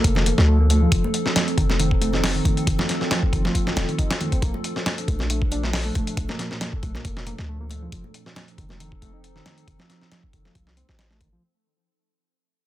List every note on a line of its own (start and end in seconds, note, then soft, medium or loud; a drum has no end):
0.00 0.88 A#2 medium
0.00 7.88 F3 medium
0.00 0.25 A#3 medium
0.00 0.88 D4 medium
0.00 7.88 A4 medium
0.00 downlifter medium
0.04 0.32 F1 medium
0.04 kick loud
0.04 closed hi-hat medium
0.15 snare medium
0.15 low conga medium
0.26 0.32 A#3 medium
0.26 closed hi-hat medium
0.26 high conga medium
0.38 0.87 D2 medium
0.38 0.47 A3 loud
0.38 snare medium
0.48 0.59 A3 loud
0.60 0.65 A#3 medium
0.70 0.80 A3 medium
0.70 closed hi-hat medium
0.70 high conga medium
0.82 0.91 F3 medium
0.92 1.00 F1 loud
0.92 4.39 C4 medium
0.92 2.65 D#4 medium
0.92 kick loud
0.92 closed hi-hat medium
1.04 high conga loud
1.14 closed hi-hat medium
1.26 snare soft
1.36 snare loud
1.36 closed hi-hat medium
1.36 high conga medium
1.48 closed hi-hat soft
1.58 2.40 F1 medium
1.58 1.64 D#3 medium
1.58 kick medium
1.58 closed hi-hat medium
1.70 snare soft
1.70 high conga medium
1.79 1.91 D#3 medium
1.79 closed hi-hat medium
1.91 kick medium
2.01 2.12 A3 medium
2.01 closed hi-hat medium
2.01 high conga medium
2.13 2.18 D#4 medium
2.13 snare soft
2.13 low conga medium
2.24 snare loud
2.24 open hi-hat medium
2.35 2.78 D#3 medium
2.45 kick loud
2.45 closed hi-hat medium
2.45 high conga medium
2.57 closed hi-hat soft
2.67 2.75 F1 loud
2.67 4.41 F4 medium
2.67 kick loud
2.67 closed hi-hat medium
2.79 3.10 F3 medium
2.79 snare medium
2.79 high conga loud
2.79 low conga medium
2.89 snare soft
2.89 closed hi-hat medium
3.01 snare soft
3.11 3.22 F3 medium
3.11 snare loud
3.11 closed hi-hat medium
3.11 high conga medium
3.23 kick medium
3.33 3.48 F1 medium
3.33 3.43 D#3 medium
3.33 kick medium
3.33 closed hi-hat medium
3.45 3.76 F3 medium
3.45 snare soft
3.45 high conga loud
3.55 kick loud
3.55 closed hi-hat medium
3.67 snare medium
3.67 low conga medium
3.76 3.85 D#1 medium
3.76 3.83 F3 medium
3.76 snare loud
3.76 closed hi-hat medium
3.76 high conga medium
3.88 3.98 D#3 medium
3.88 closed hi-hat soft
3.99 4.10 D#4 medium
3.99 kick medium
3.99 closed hi-hat medium
4.10 4.16 F3 medium
4.10 snare loud
4.10 closed hi-hat medium
4.20 4.30 D#3 medium
4.20 closed hi-hat soft
4.20 high conga medium
4.32 4.41 C4 medium
4.32 kick medium
4.32 closed hi-hat medium
4.42 4.50 A#1 loud
4.42 7.89 A#2 medium
4.42 4.52 A#3 medium
4.42 7.89 D4 medium
4.42 kick loud
4.42 closed hi-hat medium
4.54 high conga loud
4.64 closed hi-hat medium
4.76 snare soft
4.86 snare loud
4.86 closed hi-hat medium
4.86 high conga medium
4.98 closed hi-hat soft
5.08 5.90 A#1 medium
5.08 5.14 A3 medium
5.08 kick medium
5.08 closed hi-hat medium
5.19 snare soft
5.19 high conga medium
5.30 5.41 A3 medium
5.30 closed hi-hat medium
5.42 kick medium
5.51 5.62 D4 medium
5.51 closed hi-hat medium
5.51 high conga medium
5.63 5.69 A3 medium
5.63 snare soft
5.73 snare loud
5.73 open hi-hat medium
5.85 6.28 A3 medium
5.95 kick medium
5.95 closed hi-hat medium
5.95 high conga medium
6.07 closed hi-hat soft
6.17 6.25 A#1 loud
6.17 kick loud
6.17 closed hi-hat medium
6.29 6.60 A#3 medium
6.29 snare medium
6.29 high conga medium
6.39 snare soft
6.39 closed hi-hat medium
6.51 snare soft
6.61 6.72 A#3 medium
6.61 snare loud
6.61 closed hi-hat medium
6.61 high conga medium
6.73 kick medium
6.83 6.99 A#1 medium
6.83 6.93 A3 medium
6.83 kick medium
6.83 closed hi-hat medium
6.95 7.26 A#3 medium
6.95 snare soft
6.95 high conga medium
7.05 7.33 F1 medium
7.05 kick loud
7.05 closed hi-hat medium
7.17 snare medium
7.26 7.33 A#3 medium
7.26 closed hi-hat medium
7.26 high conga medium
7.38 7.88 D2 medium
7.38 7.48 A3 loud
7.38 snare medium
7.49 7.60 A3 loud
7.61 7.66 A#3 medium
7.70 7.81 A3 medium
7.70 closed hi-hat medium
7.70 high conga medium
7.82 7.91 F3 medium
7.92 8.01 F1 medium
7.92 8.03 F3 medium
7.92 11.39 F3 medium
7.92 11.39 C4 medium
7.92 11.39 D#4 medium
7.92 11.39 A4 medium
7.92 kick loud
7.92 closed hi-hat medium
8.04 high conga medium
8.14 closed hi-hat medium
8.26 snare soft
8.35 snare loud
8.35 closed hi-hat medium
8.35 high conga medium
8.48 closed hi-hat soft
8.58 9.41 F1 medium
8.58 8.64 D#3 medium
8.58 kick medium
8.58 closed hi-hat medium
8.69 snare soft
8.69 high conga medium
8.80 8.91 D#3 medium
8.80 closed hi-hat medium
8.92 kick medium
9.02 9.12 A3 medium
9.02 kick loud
9.02 closed hi-hat medium
9.02 high conga medium
9.14 9.19 D#4 medium
9.24 closed hi-hat medium
9.36 9.78 D#3 medium
9.36 snare soft
9.46 snare loud
9.46 closed hi-hat medium
9.46 high conga medium
9.58 closed hi-hat soft
9.68 9.76 F1 medium
9.68 kick loud
9.68 closed hi-hat medium
9.79 10.10 F3 medium
9.79 snare medium
9.79 high conga medium
9.90 snare soft
9.90 closed hi-hat medium
10.02 snare soft
10.11 10.23 F3 medium
10.11 snare loud
10.11 closed hi-hat medium
10.11 high conga medium
10.23 kick medium
10.33 10.49 F1 medium
10.33 10.43 D#3 medium
10.33 kick medium
10.33 closed hi-hat medium
10.45 10.76 F3 medium
10.45 snare soft
10.45 high conga medium
10.55 10.83 C2 medium
10.55 kick loud
10.55 closed hi-hat medium
10.67 snare medium
10.77 10.87 C4 medium
10.77 closed hi-hat medium
10.77 high conga medium
10.89 11.38 A1 medium
10.89 10.98 C4 medium
10.89 snare medium
10.99 11.10 C4 medium
10.99 snare loud
10.99 closed hi-hat medium
11.11 11.19 A3 medium
11.11 snare soft
11.21 11.27 D#3 medium
11.21 kick medium
11.21 closed hi-hat medium
11.21 high conga medium
11.33 11.41 F3 medium